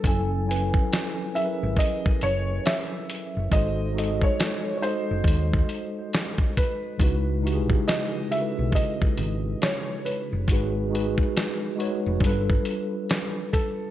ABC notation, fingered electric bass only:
X:1
M:4/4
L:1/16
Q:"Swing 16ths" 1/4=69
K:C#m
V:1 name="Fingered electric bass" clef=bass
F,,,4 z3 G,,, z2 F,,,2 z3 F,,, | G,,,4 z3 F,,, D,,2 z6 | C,,4 z3 B,,, z2 G,,,2 z3 F,,, | G,,,4 z3 ^E,,, =G,,,2 z6 |]